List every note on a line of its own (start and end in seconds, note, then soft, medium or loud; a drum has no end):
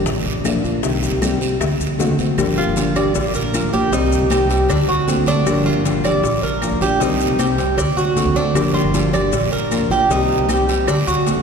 0.06 0.24 A#1 loud
0.06 muted steel-string acoustic guitar stroke medium
0.06 high bongo medium
0.06 high conga soft
0.06 low conga medium
0.06 long guiro medium
0.06 maracas medium
0.25 0.53 A#1 medium
0.25 high bongo soft
0.25 high conga soft
0.44 0.63 F3 medium
0.44 0.64 A#3 medium
0.44 0.64 D4 medium
0.44 0.63 F4 medium
0.44 high bongo soft
0.44 low bongo medium
0.44 high conga medium
0.44 short guiro medium
0.44 claves medium
0.44 maracas medium
0.54 0.63 A#1 medium
0.64 0.82 A#1 medium
0.64 0.84 A#3 soft
0.64 0.83 D4 soft
0.64 0.83 F4 soft
0.64 high conga medium
0.64 short guiro medium
0.64 maracas soft
0.83 1.11 C2 medium
0.83 1.20 C3 medium
0.83 1.21 D#3 medium
0.83 1.21 G3 medium
0.83 1.22 C4 medium
0.83 1.22 G4 medium
0.83 high bongo medium
0.83 long guiro medium
0.83 maracas medium
1.03 high bongo soft
1.03 high conga soft
1.03 maracas medium
1.12 1.58 C2 medium
1.21 1.40 C3 medium
1.21 1.41 D#3 medium
1.21 1.41 G3 medium
1.21 1.40 C4 medium
1.21 1.39 G4 medium
1.21 high bongo medium
1.21 high conga loud
1.21 short guiro medium
1.21 claves medium
1.21 maracas medium
1.40 1.60 G3 soft
1.40 1.60 C4 soft
1.40 1.60 G4 soft
1.40 high bongo soft
1.40 high conga soft
1.40 short guiro medium
1.40 maracas soft
1.60 1.79 D2 loud
1.60 muted steel-string acoustic guitar stroke medium
1.60 high bongo medium
1.60 high conga soft
1.60 long guiro medium
1.60 claves medium
1.60 maracas medium
1.79 2.07 D2 medium
1.79 high bongo soft
1.79 high conga soft
1.79 maracas medium
1.98 2.18 D3 medium
1.98 2.18 A3 medium
1.98 2.18 C4 medium
1.98 2.17 F#4 medium
1.98 high bongo soft
1.98 low bongo medium
1.98 high conga medium
1.98 short guiro medium
1.98 maracas medium
2.09 2.18 D2 loud
2.18 2.37 D2 medium
2.18 2.38 A3 soft
2.18 2.38 C4 soft
2.18 2.37 F#4 soft
2.18 high conga medium
2.18 short guiro medium
2.18 maracas soft
2.37 2.66 G1 loud
2.37 2.74 D3 medium
2.37 2.75 F3 medium
2.37 2.76 A#3 medium
2.37 2.76 D4 medium
2.37 2.76 G4 medium
2.37 cowbell loud
2.37 high conga soft
2.37 long guiro medium
2.37 claves medium
2.37 maracas medium
2.58 2.95 F4 medium
2.58 high conga soft
2.67 3.13 G1 medium
2.75 2.95 D3 medium
2.75 2.95 F3 medium
2.75 2.95 A#3 medium
2.75 2.95 D4 medium
2.75 2.94 G4 medium
2.75 cowbell medium
2.75 high conga medium
2.75 short guiro medium
2.75 maracas medium
2.95 3.14 A#3 soft
2.95 3.14 D4 soft
2.95 3.14 G4 medium
2.95 3.34 D5 medium
2.95 cowbell medium
2.95 high conga soft
2.95 low conga medium
2.95 short guiro medium
2.95 claves medium
2.95 maracas soft
3.14 3.34 A#1 loud
3.14 muted steel-string acoustic guitar stroke medium
3.14 cowbell loud
3.14 high conga soft
3.14 long guiro medium
3.14 maracas medium
3.34 3.62 A#1 medium
3.34 3.72 A#4 medium
3.34 high conga soft
3.34 maracas medium
3.52 3.72 F3 medium
3.52 3.72 A#3 medium
3.52 3.72 D4 medium
3.52 3.71 F4 medium
3.52 cowbell medium
3.52 high conga medium
3.52 short guiro medium
3.52 claves medium
3.52 maracas medium
3.63 3.72 A#1 medium
3.72 3.91 A#1 loud
3.72 3.92 A#3 soft
3.72 3.92 D4 soft
3.72 3.91 F4 medium
3.72 3.92 G4 medium
3.72 high conga medium
3.72 short guiro medium
3.72 maracas soft
3.92 4.20 C2 loud
3.92 4.29 C3 medium
3.92 4.29 D#3 medium
3.92 4.30 G3 medium
3.92 4.31 C4 medium
3.92 4.30 D#4 medium
3.92 4.31 G4 medium
3.92 cowbell loud
3.92 high conga soft
3.92 long guiro medium
3.92 maracas medium
4.12 high conga soft
4.12 maracas medium
4.21 4.67 C2 medium
4.30 4.49 C3 medium
4.30 4.49 D#3 medium
4.30 4.50 G3 medium
4.30 4.50 C4 medium
4.30 4.69 G4 medium
4.30 4.48 G4 medium
4.30 cowbell medium
4.30 high conga medium
4.30 short guiro medium
4.30 claves medium
4.30 maracas medium
4.50 4.69 G3 soft
4.50 4.69 C4 soft
4.50 4.68 G4 soft
4.50 cowbell medium
4.50 high conga soft
4.50 short guiro medium
4.50 maracas soft
4.69 4.88 D2 loud
4.69 4.88 D4 medium
4.69 muted steel-string acoustic guitar stroke medium
4.69 cowbell loud
4.69 high conga soft
4.69 long guiro medium
4.69 claves medium
4.69 maracas medium
4.88 5.16 D2 medium
4.88 5.26 F#4 medium
4.88 high conga soft
5.07 5.26 D3 medium
5.07 5.27 A3 medium
5.07 5.27 C4 medium
5.07 5.25 F#4 medium
5.07 cowbell medium
5.07 high conga medium
5.07 short guiro medium
5.07 maracas medium
5.17 5.26 D2 loud
5.26 5.45 D2 loud
5.26 5.47 A3 soft
5.26 5.46 C4 medium
5.26 5.65 D4 loud
5.26 5.46 F#4 soft
5.26 cowbell medium
5.26 high conga medium
5.26 short guiro medium
5.26 maracas soft
5.45 5.73 G1 loud
5.45 5.84 D3 medium
5.45 5.84 F3 medium
5.45 5.85 A#3 medium
5.45 5.85 D4 medium
5.45 5.85 G4 medium
5.45 cowbell loud
5.45 high conga soft
5.45 long guiro medium
5.45 claves medium
5.45 maracas medium
5.66 6.03 F4 medium
5.74 6.21 G1 medium
5.85 6.04 D3 medium
5.85 6.04 F3 medium
5.85 6.04 A#3 medium
5.85 6.04 D4 medium
5.85 6.04 G4 medium
5.85 cowbell medium
5.85 high conga medium
5.85 short guiro medium
5.85 maracas medium
6.04 6.23 A#3 soft
6.04 6.23 D4 soft
6.04 6.23 G4 soft
6.04 6.42 D5 medium
6.04 cowbell medium
6.04 high conga soft
6.04 low conga medium
6.04 short guiro medium
6.04 claves medium
6.04 maracas soft
6.23 6.42 A#1 loud
6.23 muted steel-string acoustic guitar stroke medium
6.23 cowbell loud
6.23 high conga soft
6.23 low conga medium
6.23 long guiro medium
6.23 maracas medium
6.42 6.70 A#1 medium
6.42 6.81 A#4 medium
6.42 high conga soft
6.61 6.80 F3 medium
6.61 6.81 A#3 medium
6.61 6.81 D4 medium
6.61 6.79 F4 medium
6.61 cowbell medium
6.61 high conga medium
6.61 short guiro medium
6.61 claves medium
6.61 maracas medium
6.71 6.80 A#1 loud
6.80 7.00 A#1 medium
6.80 7.01 A#3 soft
6.80 7.01 D4 soft
6.80 7.00 F4 medium
6.80 7.01 G4 medium
6.80 high conga medium
6.80 short guiro medium
6.80 maracas soft
7.00 7.28 C2 loud
7.00 7.38 C3 medium
7.00 7.38 D#3 medium
7.00 7.39 G3 medium
7.00 7.40 C4 medium
7.00 7.38 D#4 medium
7.00 7.40 G4 medium
7.00 cowbell loud
7.00 long guiro medium
7.00 maracas medium
7.20 high conga soft
7.20 maracas medium
7.29 7.75 C2 medium
7.39 7.58 C3 medium
7.39 7.58 D#3 medium
7.39 7.58 G3 medium
7.39 7.58 C4 medium
7.39 7.77 G4 medium
7.39 7.56 G4 medium
7.39 cowbell medium
7.39 high conga medium
7.39 short guiro medium
7.39 claves medium
7.39 maracas medium
7.58 7.78 G3 soft
7.58 7.77 C4 soft
7.58 7.77 G4 soft
7.58 cowbell medium
7.58 high conga soft
7.58 short guiro medium
7.58 maracas soft
7.77 7.96 D2 loud
7.77 7.97 D4 medium
7.77 muted steel-string acoustic guitar stroke medium
7.77 cowbell loud
7.77 high conga soft
7.77 long guiro medium
7.77 claves medium
7.77 maracas medium
7.96 8.24 D2 medium
7.96 8.35 F#4 medium
7.96 high conga soft
7.96 maracas medium
8.16 8.35 D3 medium
8.16 8.35 A3 medium
8.16 8.36 C4 medium
8.16 8.35 F#4 medium
8.16 cowbell medium
8.16 high conga medium
8.16 short guiro medium
8.16 maracas medium
8.25 8.34 D2 medium
8.35 8.53 D2 medium
8.35 8.56 A3 soft
8.35 8.55 C4 soft
8.35 8.74 D4 medium
8.35 8.55 F#4 soft
8.35 cowbell medium
8.35 high conga medium
8.35 short guiro medium
8.35 maracas soft
8.54 8.82 G1 medium
8.54 8.92 D3 medium
8.54 8.93 F3 medium
8.54 8.93 A#3 medium
8.54 8.94 D4 medium
8.54 8.94 G4 medium
8.54 cowbell loud
8.54 high conga soft
8.54 long guiro medium
8.54 claves medium
8.54 maracas medium
8.74 9.12 F4 medium
8.74 high conga soft
8.83 9.30 G1 medium
8.93 9.12 D3 medium
8.93 9.13 F3 medium
8.93 9.13 A#3 medium
8.93 9.12 D4 medium
8.93 9.11 G4 medium
8.93 cowbell medium
8.93 high conga medium
8.93 short guiro medium
8.93 maracas medium
9.12 9.32 A#3 soft
9.12 9.32 D4 soft
9.12 9.32 G4 soft
9.12 9.51 D5 medium
9.12 cowbell medium
9.12 high conga soft
9.12 low conga medium
9.12 short guiro medium
9.12 claves medium
9.12 maracas soft
9.32 9.51 A#1 loud
9.32 muted steel-string acoustic guitar stroke medium
9.32 cowbell loud
9.32 high conga soft
9.32 low conga medium
9.32 long guiro medium
9.32 maracas medium
9.52 9.80 A#1 medium
9.52 9.90 A#4 medium
9.71 9.90 F3 medium
9.71 9.91 A#3 medium
9.71 9.91 D4 medium
9.71 9.90 F4 medium
9.71 cowbell medium
9.71 high conga medium
9.71 short guiro medium
9.71 claves medium
9.71 maracas medium
9.81 9.89 A#1 medium
9.90 10.08 A#1 loud
9.90 10.11 A#3 soft
9.90 10.10 D4 soft
9.90 10.10 F4 medium
9.90 10.10 G4 medium
9.90 high conga medium
9.90 short guiro medium
9.90 maracas soft
10.09 10.37 C2 medium
10.09 10.47 C3 medium
10.09 10.48 D#3 medium
10.09 10.49 G3 medium
10.09 10.49 C4 medium
10.09 10.49 D#4 medium
10.09 10.50 G4 medium
10.09 cowbell loud
10.09 high conga soft
10.09 long guiro medium
10.09 maracas medium
10.30 high conga soft
10.39 10.85 C2 medium
10.49 10.68 C3 medium
10.49 10.68 D#3 medium
10.49 10.68 G3 medium
10.49 10.68 C4 medium
10.49 10.87 G4 medium
10.49 10.67 G4 medium
10.49 cowbell medium
10.49 high conga medium
10.49 short guiro medium
10.49 claves medium
10.49 maracas medium
10.68 10.88 G3 soft
10.68 10.87 C4 soft
10.68 10.87 G4 medium
10.68 cowbell medium
10.68 high conga soft
10.68 short guiro medium
10.68 maracas soft
10.87 11.06 D2 loud
10.87 11.07 D4 medium
10.87 muted steel-string acoustic guitar stroke medium
10.87 cowbell loud
10.87 high conga soft
10.87 long guiro medium
10.87 claves medium
10.87 maracas medium
11.07 11.35 D2 medium
11.07 11.42 F#4 medium
11.07 high conga soft
11.07 maracas medium
11.26 11.42 D3 medium
11.26 11.42 A3 medium
11.26 11.42 C4 medium
11.26 11.42 F#4 medium
11.26 cowbell medium
11.26 high conga medium
11.26 short guiro medium
11.26 maracas medium
11.36 11.42 D2 loud